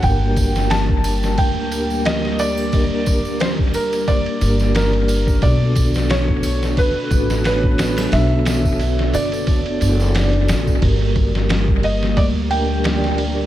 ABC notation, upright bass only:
X:1
M:4/4
L:1/8
Q:"Swing 16ths" 1/4=89
K:Gm
V:1 name="Upright bass" clef=bass
G,,,4 D,,4- | D,,4 z G,,,3 | =B,,,4 z A,,,3 | =B,,,3 ^F,,,2 F,,,2 A,,, |
G,,,4 D,,4 |]